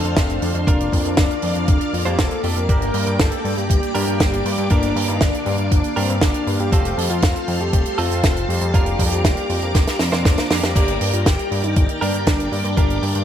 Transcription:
Already playing: A3 C4 D4 F4 A4 C5 F5 C6
0.04 F2, closed hi-hat
0.17 F1, kick, snare, closed hi-hat
0.30 closed hi-hat
0.42 F2 D4, open hi-hat
0.55 F2, closed hi-hat
0.67 F1 A#3 D4 F4 A#4 D5 F5 D6, kick, closed hi-hat
0.80 closed hi-hat
0.92 F2, kick, open hi-hat
1.05 F2, closed hi-hat
1.17 F1, kick, snare, closed hi-hat
1.31 closed hi-hat
1.42 F2, open hi-hat
1.55 F2, closed hi-hat
1.68 F1, kick, closed hi-hat
1.81 closed hi-hat
1.93 F2 F4, open hi-hat
2.05 F2 A#3 D4 F4 G4 C5, closed hi-hat
2.19 F1 A4, kick, snare, closed hi-hat
2.31 closed hi-hat
2.43 F2 A#3 D4 F4 G4, open hi-hat
2.56 F2 A#4, closed hi-hat
2.69 G1 A#3 D4 G4 A#4 D5 G5, kick, closed hi-hat
2.82 closed hi-hat
2.94 G2, open hi-hat
3.07 G2, closed hi-hat
3.19 G1 A4, kick, snare, closed hi-hat
3.32 closed hi-hat
3.45 G2, open hi-hat
3.57 G2 G4, closed hi-hat
3.70 G1, kick, closed hi-hat
3.83 closed hi-hat
3.95 G2 A#3 D4 G4 A#4, open hi-hat
4.07 G2, closed hi-hat
4.20 G1, kick, snare, closed hi-hat
4.33 closed hi-hat
4.45 G2, open hi-hat
4.58 G2, closed hi-hat
4.70 G1 A#3 D4 G4 A#4 F5, kick, closed hi-hat
4.83 closed hi-hat
4.96 G2, open hi-hat
5.08 G2 D#4, closed hi-hat
5.21 G1 D4, kick, snare, closed hi-hat
5.34 closed hi-hat
5.46 G2, open hi-hat
5.58 G2, closed hi-hat
5.71 G1 D4, kick, closed hi-hat
5.84 closed hi-hat
5.96 G2 A#3 C4 D4 G4 A#4, open hi-hat
6.09 G2 C4, closed hi-hat
6.21 G1 D4, kick, snare, closed hi-hat
6.34 closed hi-hat
6.47 G2, open hi-hat
6.60 G2 G4, closed hi-hat
6.72 F1 A3 C4 F4 A4 C5 C6, kick, closed hi-hat
6.85 closed hi-hat
6.97 F2, open hi-hat
7.10 F2 F4, closed hi-hat
7.22 F1 F4, kick, snare, closed hi-hat
7.36 closed hi-hat
7.48 F2, open hi-hat
7.60 F2 G4, closed hi-hat
7.73 F1, kick, closed hi-hat
7.86 closed hi-hat
7.98 F2 A3 C4 F4 A4, open hi-hat
8.11 F2, closed hi-hat
8.23 F1, kick, snare, closed hi-hat
8.37 closed hi-hat
8.49 F2 G4, open hi-hat
8.61 F2, closed hi-hat
8.74 F1 A#3 D4 F4 A#4 D5 D6, kick, closed hi-hat
8.86 closed hi-hat
8.99 F2, kick, open hi-hat
9.12 F2, closed hi-hat
9.24 F1, kick, snare, closed hi-hat
9.37 closed hi-hat
9.50 F2, open hi-hat
9.62 F2, closed hi-hat
9.75 F1, kick, snare, closed hi-hat
9.87 snare, closed hi-hat
9.99 F2 C4, snare, open hi-hat
10.12 F2 A#3 C4 D4 F4 C5, snare, closed hi-hat
10.25 F1 D4, kick, snare, closed hi-hat
10.38 snare, closed hi-hat
10.50 F2 A#3 D4 F4 G4, snare, open hi-hat
10.63 F2 G4, snare, closed hi-hat
10.75 G1 A#3 G4 A#4 D5 G5 D6, kick, closed hi-hat, crash
10.88 closed hi-hat
11.01 G2, open hi-hat
11.13 G2 F4, closed hi-hat
11.26 G1 G4, kick, snare, closed hi-hat
11.39 closed hi-hat
11.51 G2, open hi-hat
11.64 G2 D#4, closed hi-hat
11.76 G1, kick, closed hi-hat
11.89 closed hi-hat
12.01 G2 A#3 D4 G4 A#4, open hi-hat
12.14 G2, closed hi-hat
12.27 G1, kick, snare, closed hi-hat
12.40 closed hi-hat
12.52 G2 D4, open hi-hat
12.65 G2, closed hi-hat
12.77 G1 A#3 D4 G4 A#4, kick, closed hi-hat
12.90 closed hi-hat
13.02 G2, open hi-hat
13.15 G2, closed hi-hat

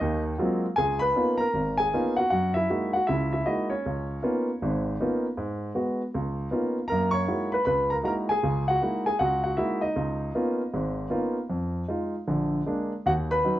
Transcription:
Already playing: D#5
0.01 D#2 D#3
0.38 F#3 G#3 A#3 C4 F4
0.76 C#2 G#4 G#5
0.99 B4 B5
1.16 A#3 B3 C#4 D#4 F4
1.38 A#4 A#5
1.54 G#1
1.77 G#4 G#5
1.93 A#3 B3 C#4 D#4 F4
2.17 F#4 F#5
2.30 F#2 F#4 F#5
2.54 E4 E5
2.70 G#3 A#3 D#4 E4 F#4
2.93 F#4 F#5
3.07 C#2 C#3 E4 E5
3.33 E4 E5
3.46 G#3 A#3 D#4 E4 F#4 D#5
3.70 C#4 C#5
3.86 C#2
4.22 A#3 B3 C#4 D#4 F4
4.62 G#1 G#2
5.00 A#3 B3 C#4 D#4 F4
5.37 G#2
5.75 G#3 B3 F#4
6.15 C#2
6.51 A#3 B3 C#4 D#4 F4
6.88 F#2 A#4 A#5
6.92 A#3
7.11 C#5 C#6
7.28 G#3 A#3 D#4 E4 F#4
7.52 B4 B5
7.65 C#2 B4 B5
7.90 A#4 A#5
8.03 G#3 A#3 D#4 E4 F#4 A#5
8.08 A#4
8.29 G#4 G#5
8.43 C#2 C#3
8.68 F#4 F#5
8.82 G#3 A#3 D#4 E4 F#4
9.06 G#4 G#5
9.19 C#2 F#4 F#5
9.44 F#4 F#5
9.57 G#3 A#3 D#4 E4 F#4 E5
9.81 D#4 D#5
9.96 C#2
10.34 A#3 B3 C#4 D#4 F4
10.74 G#1 G#2
11.10 A#3 B3 C#4 D#4 F4
11.50 F2
11.88 G#3 D#4 F4
12.27 A#1 D3
12.66 G#3 A#3 D4
13.06 D#2 F#4 F#5
13.31 B4 B5
13.44 F#3 C#4 D#4

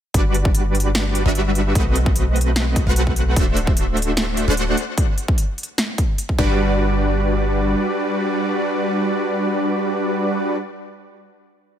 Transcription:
0.14 G1 G3 D4 F#4 B4 D5, kick, closed hi-hat
0.34 closed hi-hat
0.45 kick
0.55 closed hi-hat
0.75 closed hi-hat
0.80 closed hi-hat
0.95 snare, closed hi-hat
1.15 closed hi-hat
1.26 G1 G3 D4 F#4 B4 E5
1.35 closed hi-hat
1.55 closed hi-hat
1.75 B1 A3 C4 F#4 B4 D#5, kick, closed hi-hat
1.96 closed hi-hat
2.06 kick
2.16 closed hi-hat
2.36 closed hi-hat
2.41 closed hi-hat
2.56 snare, closed hi-hat
2.76 kick, closed hi-hat
2.87 B1 A3 C4 F#4 B4 F#5
2.96 closed hi-hat
3.07 kick
3.16 closed hi-hat
3.36 D1 A3 D4 F#4 C5 E5, kick, closed hi-hat
3.57 closed hi-hat
3.67 kick
3.77 closed hi-hat
3.97 closed hi-hat
4.02 closed hi-hat
4.17 snare, closed hi-hat
4.37 closed hi-hat
4.48 D1 A3 D4 F#4 C5 F#5
4.57 closed hi-hat
4.77 closed hi-hat
4.98 kick, closed hi-hat
5.18 closed hi-hat
5.28 kick
5.38 closed hi-hat
5.58 closed hi-hat
5.63 closed hi-hat
5.78 snare, closed hi-hat
5.98 kick, closed hi-hat
6.18 closed hi-hat
6.29 kick
6.39 G1 G3 D4 F#4 B4 D5, kick

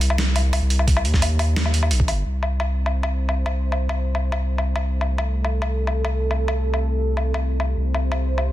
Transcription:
Already playing: C2
0.01 closed hi-hat
0.10 low woodblock
0.18 snare, closed hi-hat
0.36 closed hi-hat, low woodblock
0.53 closed hi-hat, low woodblock
0.62 C2
0.70 closed hi-hat
0.79 low woodblock
0.88 kick, closed hi-hat
0.97 low woodblock
1.05 D#2, closed hi-hat
1.14 kick, snare
1.22 closed hi-hat, low woodblock
1.39 closed hi-hat, low woodblock
1.56 snare, closed hi-hat
1.66 low woodblock
1.74 closed hi-hat
1.83 low woodblock
1.91 A#1, closed hi-hat
2.00 kick
2.08 G1, closed hi-hat, low woodblock
2.26 C2 C4 G4 C5
2.43 low woodblock
2.60 low woodblock
2.86 low woodblock
3.03 low woodblock
3.29 low woodblock
3.46 low woodblock
3.72 low woodblock
3.89 low woodblock
4.15 low woodblock
4.32 low woodblock
4.58 low woodblock
4.76 low woodblock
5.01 A4, low woodblock
5.18 low woodblock
5.45 low woodblock
5.62 low woodblock
5.87 low woodblock
6.05 low woodblock
6.31 low woodblock
6.48 low woodblock
6.74 low woodblock
7.17 low woodblock
7.34 low woodblock
7.60 low woodblock
7.77 C2 C5
7.95 low woodblock
8.12 low woodblock
8.38 low woodblock

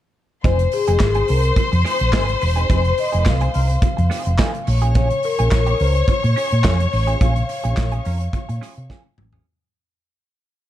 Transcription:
0.44 F1 C4 D#4 G#4 C5 C6, kick, closed hi-hat
0.59 muted clean electric guitar stroke, closed hi-hat
0.72 G#4, muted clean electric guitar stroke, open hi-hat
0.87 F1 C4 D#4 G#4, closed hi-hat
0.99 G#1, kick, snare, clap, closed hi-hat
1.15 C4 D#4 G#4, closed hi-hat
1.28 C2 C4 D#4 A#4, open hi-hat
1.43 muted clean electric guitar stroke, closed hi-hat
1.56 C5, muted clean electric guitar stroke, muted fingered electric bass stroke, kick, closed hi-hat
1.72 F2, muted clean electric guitar stroke, closed hi-hat
1.85 C4 D#4 G#4, snare, open hi-hat
1.99 A#1, muted clean electric guitar stroke, closed hi-hat
2.13 G#1 C4 D#4 G#4, kick, snare, clap, closed hi-hat
2.28 muted clean electric guitar stroke, closed hi-hat
2.41 E1, muted clean electric guitar stroke, open hi-hat
2.56 C4 D#4 G#4, closed hi-hat
2.69 F1 C4 D#4 G#4 C5, kick, closed hi-hat
2.85 closed hi-hat
2.98 D#5, muted clean electric guitar stroke, open hi-hat
3.12 F1 C4 D#4 G#4, closed hi-hat
3.25 C2 F5, kick, snare, clap, closed hi-hat
3.41 C4 D#4 G#4, closed hi-hat
3.54 C2 C4 D#4 A#4, open hi-hat
3.69 muted clean electric guitar stroke, closed hi-hat
3.82 muted clean electric guitar stroke, muted fingered electric bass stroke, kick, closed hi-hat
3.97 F2, muted clean electric guitar stroke, closed hi-hat
4.10 C4 D#4 G#4, snare, open hi-hat
4.25 F1, muted clean electric guitar stroke, closed hi-hat
4.38 C4 D#4 G#4, kick, snare, clap, closed hi-hat
4.54 muted clean electric guitar stroke, closed hi-hat
4.67 A#1 C#5 C#6, muted clean electric guitar stroke, open hi-hat
4.82 C#4 F4 G#4, closed hi-hat
4.95 C#4 F4 G#4 C#5, kick, closed hi-hat
5.10 muted clean electric guitar stroke, closed hi-hat
5.23 A#4, muted clean electric guitar stroke, open hi-hat
5.39 A#1 C#4 F4 G#4, closed hi-hat
5.51 A#1, kick, snare, clap, closed hi-hat
5.66 C#4 F4 G#4, closed hi-hat
5.80 C#2 C#4 F4 A#4 C5, open hi-hat
5.95 muted clean electric guitar stroke, closed hi-hat
6.08 C#5, muted fingered electric bass stroke, muted clean electric guitar stroke, kick, closed hi-hat
6.23 A#2, muted clean electric guitar stroke, closed hi-hat
6.36 C#4 F4 G#4, open hi-hat
6.51 A#2, muted clean electric guitar stroke, closed hi-hat
6.64 F2 C#4 F4 G#4, kick, snare, clap, closed hi-hat
6.79 muted clean electric guitar stroke, closed hi-hat
6.92 A1, muted clean electric guitar stroke, open hi-hat
7.07 C#4 F4 G#4, closed hi-hat
7.21 A#1 C#4 F4 G#4 F5, kick, closed hi-hat
7.36 muted clean electric guitar stroke, closed hi-hat
7.49 muted clean electric guitar stroke, open hi-hat
7.64 A#1 C#4 F4 G#4, closed hi-hat
7.77 A#1, kick, snare, clap, closed hi-hat
7.92 C#4 F4 G#4, closed hi-hat
8.05 F2 C#4 F4 A#4, open hi-hat
8.21 muted clean electric guitar stroke, closed hi-hat
8.33 muted clean electric guitar stroke, muted fingered electric bass stroke, kick, closed hi-hat
8.49 A#2, muted clean electric guitar stroke, closed hi-hat
8.61 C#4 F4 G#4, snare, open hi-hat
8.76 C3, muted clean electric guitar stroke, closed hi-hat
8.89 C#4 F4 G#4, kick, snare
9.05 muted clean electric guitar stroke
9.18 A1, muted clean electric guitar stroke, mid tom
9.33 C#4 F4 G#4, floor tom

